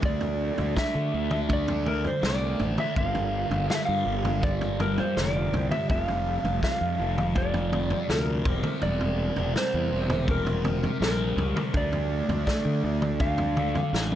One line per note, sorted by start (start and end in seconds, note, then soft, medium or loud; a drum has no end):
0.02 0.50 D2 medium
0.02 0.74 D3 medium
0.02 2.93 F3 medium
0.02 0.58 A3 medium
0.02 2.93 D4 medium
0.02 0.57 D4 medium
0.02 2.93 A4 medium
0.02 0.74 D5 loud
0.02 kick medium
0.02 floor tom medium
0.21 floor tom medium
0.58 0.74 D2 medium
0.58 0.75 A3 medium
0.58 0.77 D4 medium
0.58 floor tom medium
0.75 1.12 D3 medium
0.75 1.13 A3 medium
0.75 1.15 D4 loud
0.75 1.53 E5 medium
0.75 kick medium
0.75 snare medium
0.95 1.11 D3 medium
1.13 2.07 D2 medium
1.13 1.47 D3 medium
1.13 1.31 A3 medium
1.13 1.30 D4 medium
1.31 muted distorted electric guitar stroke soft
1.31 mid tom medium
1.49 1.83 D3 medium
1.49 1.69 A3 medium
1.49 1.66 D4 medium
1.49 kick loud
1.49 floor tom medium
1.53 1.89 D5 medium
1.68 1.85 A3 medium
1.68 1.86 D4 medium
1.68 floor tom medium
1.85 2.21 D3 medium
1.85 2.04 A3 medium
1.85 2.03 D4 medium
1.85 2.06 A#4 medium
1.85 mid tom medium
2.04 2.25 C5 medium
2.04 muted distorted electric guitar stroke soft
2.04 floor tom medium
2.22 2.54 C2 medium
2.22 2.94 D3 medium
2.22 2.78 A3 medium
2.22 2.76 D4 medium
2.22 snare medium
2.26 2.79 D5 medium
2.60 2.75 A1 medium
2.60 floor tom medium
2.77 2.95 A3 soft
2.77 2.94 D4 medium
2.77 2.97 E5 medium
2.77 mid tom medium
2.95 3.43 G1 medium
2.95 3.67 G2 medium
2.95 3.52 D3 medium
2.95 8.41 G3 medium
2.95 3.52 G3 medium
2.95 8.41 F4 medium
2.95 5.86 A#4 medium
2.95 3.70 F5 medium
2.95 kick medium
2.95 floor tom medium
3.15 floor tom medium
3.50 3.66 G1 medium
3.50 3.69 D3 medium
3.50 3.70 G3 medium
3.50 floor tom medium
3.68 4.04 G2 medium
3.68 4.05 D3 loud
3.68 4.06 G3 medium
3.68 3.75 F5 medium
3.68 snare medium
3.75 3.83 E5 medium
3.85 4.04 G2 medium
3.85 4.46 F5 medium
4.05 4.99 G1 medium
4.05 4.40 G2 medium
4.05 4.24 D3 medium
4.05 4.24 G3 medium
4.24 muted distorted electric guitar stroke soft
4.24 floor tom medium
4.24 mid tom medium
4.41 4.77 G2 medium
4.41 4.61 D3 medium
4.41 4.60 G3 medium
4.41 4.81 D5 medium
4.41 kick medium
4.41 floor tom medium
4.60 4.79 D3 medium
4.60 4.80 G3 medium
4.60 floor tom medium
4.79 5.14 G2 medium
4.79 4.97 D3 medium
4.79 4.97 G3 medium
4.79 4.99 A#4 medium
4.79 floor tom medium
4.79 mid tom medium
4.98 5.18 C5 medium
4.98 muted distorted electric guitar stroke soft
4.98 floor tom medium
5.15 5.48 F1 medium
5.15 5.87 G2 medium
5.15 5.71 D3 medium
5.15 5.70 G3 loud
5.15 5.71 D5 medium
5.15 snare medium
5.53 5.68 C2 medium
5.53 floor tom medium
5.71 5.88 D3 soft
5.71 5.91 G3 medium
5.71 5.90 E5 medium
5.71 mid tom medium
5.89 6.37 F1 medium
5.89 6.61 F2 medium
5.89 6.45 C3 medium
5.89 6.42 F3 medium
5.89 6.02 E5 medium
5.89 8.43 A5 medium
5.89 kick loud
5.89 floor tom medium
6.02 6.63 F5 medium
6.08 floor tom medium
6.43 6.60 F1 medium
6.43 6.62 C3 medium
6.43 6.62 F3 medium
6.43 floor tom medium
6.62 6.96 F2 loud
6.62 6.98 C3 medium
6.62 6.98 F3 loud
6.62 7.39 F5 medium
6.62 kick medium
6.62 snare medium
6.81 6.97 F2 medium
6.98 7.93 F1 medium
6.98 7.34 F2 medium
6.98 7.17 C3 medium
6.98 7.16 F3 medium
7.18 muted distorted electric guitar stroke soft
7.18 mid tom medium
7.35 7.69 F2 medium
7.35 7.55 C3 medium
7.35 7.53 F3 medium
7.35 8.12 D5 medium
7.35 kick medium
7.35 floor tom medium
7.54 7.71 C3 medium
7.54 7.72 F3 medium
7.54 floor tom medium
7.71 8.07 F2 medium
7.71 7.89 C3 medium
7.71 7.89 F3 medium
7.71 mid tom medium
7.90 muted distorted electric guitar stroke soft
7.90 floor tom medium
8.09 8.40 D2 medium
8.09 8.43 F2 medium
8.09 8.44 C3 medium
8.09 8.44 F3 medium
8.09 8.85 A#4 medium
8.09 snare medium
8.45 8.61 E1 medium
8.45 8.79 C3 medium
8.45 11.72 E3 medium
8.45 8.64 G3 medium
8.45 11.71 C4 medium
8.45 8.61 C4 medium
8.45 11.72 A#4 medium
8.45 kick medium
8.45 floor tom medium
8.62 8.80 G3 soft
8.62 8.82 C4 medium
8.62 mid tom medium
8.81 9.29 E1 medium
8.81 9.53 C3 medium
8.81 9.37 G3 medium
8.81 9.36 C4 medium
8.81 9.57 D5 medium
8.81 floor tom medium
9.01 floor tom medium
9.36 9.53 E1 medium
9.36 9.55 G3 medium
9.36 9.56 C4 medium
9.36 floor tom medium
9.55 9.90 C3 medium
9.55 9.91 G3 loud
9.55 9.91 C4 loud
9.55 10.25 C5 medium
9.55 snare medium
9.74 9.89 E2 medium
9.91 10.85 E1 medium
9.91 10.25 C3 medium
9.91 10.09 G3 medium
9.91 10.09 C4 medium
10.10 muted distorted electric guitar stroke soft
10.10 floor tom medium
10.10 mid tom medium
10.27 10.62 C3 medium
10.27 10.46 G3 medium
10.27 10.44 C4 medium
10.27 kick loud
10.27 floor tom medium
10.31 10.99 A#4 medium
10.45 10.63 G3 soft
10.45 10.64 C4 medium
10.45 floor tom medium
10.63 10.98 C3 medium
10.63 10.82 G3 medium
10.63 10.81 C4 medium
10.63 floor tom medium
10.63 mid tom medium
10.82 muted distorted electric guitar stroke soft
10.82 floor tom medium
11.00 11.32 A#1 medium
11.00 11.71 C3 medium
11.00 11.56 G3 medium
11.00 11.54 C4 loud
11.00 11.71 A#4 medium
11.00 snare medium
11.37 11.53 C#2 medium
11.37 floor tom medium
11.56 11.73 G3 medium
11.56 11.72 C4 medium
11.56 mid tom medium
11.74 12.21 D2 medium
11.74 12.46 D3 medium
11.74 14.15 F3 medium
11.74 12.30 A3 medium
11.74 14.15 D4 medium
11.74 12.28 D4 medium
11.74 14.15 A4 medium
11.74 12.46 D5 medium
11.74 kick medium
11.74 floor tom medium
11.93 floor tom medium
12.29 12.44 D2 medium
12.29 12.47 A3 medium
12.29 12.48 D4 medium
12.29 floor tom medium
12.47 12.82 D3 medium
12.47 12.83 A3 loud
12.47 12.85 D4 loud
12.47 13.22 D5 medium
12.47 kick medium
12.47 snare medium
12.65 12.81 D3 medium
12.83 13.77 D2 medium
12.83 13.18 D3 medium
12.83 13.01 A3 medium
12.83 13.01 D4 medium
13.02 muted distorted electric guitar stroke soft
13.02 mid tom medium
13.19 13.55 D3 medium
13.19 13.39 A3 medium
13.19 13.37 D4 medium
13.19 14.15 F5 medium
13.19 kick medium
13.19 floor tom medium
13.38 13.56 A3 medium
13.38 13.57 D4 medium
13.38 floor tom medium
13.56 13.92 D3 medium
13.56 13.75 A3 medium
13.56 13.74 D4 medium
13.56 mid tom medium
13.75 muted distorted electric guitar stroke soft
13.75 floor tom medium
13.93 14.15 A1 medium
13.93 14.15 D3 medium
13.93 14.15 A3 medium
13.93 14.15 D4 medium
13.93 snare medium
14.12 high tom medium